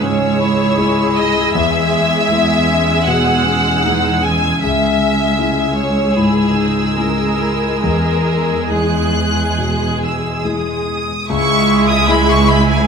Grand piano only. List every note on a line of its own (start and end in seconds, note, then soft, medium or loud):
0.00 1.58 C#2 medium
0.00 0.76 G#2 soft
0.00 1.57 E3 soft
0.00 0.78 G#3 soft
0.00 0.78 G#4 soft
0.78 1.51 G#3 soft
0.78 1.51 E4 soft
0.78 1.51 G#4 soft
1.55 2.29 E2 medium
2.31 3.03 G#3 soft
2.31 3.03 E4 soft
2.31 3.04 G#4 soft
3.07 3.82 B2 soft
3.85 4.58 E3 soft
3.85 4.58 G#3 soft
3.85 4.59 G#4 soft
4.63 5.37 C#2 soft
5.39 6.13 G#3 soft
5.39 6.13 E4 soft
5.39 6.13 G#4 soft
6.17 6.95 G#2 soft
6.97 7.79 G#3 soft
6.97 7.80 E4 soft
6.97 7.80 G#4 soft
7.84 8.69 E2 soft
8.71 9.54 G#3 soft
8.71 9.54 E4 soft
8.71 9.54 G#4 soft
9.58 10.42 B2 soft
10.44 11.25 G#3 soft
10.44 11.25 E4 soft
10.44 11.25 G#4 soft
11.30 12.05 C#2 medium
12.08 12.82 G#3 soft
12.08 12.83 E4 soft
12.08 12.83 G#4 soft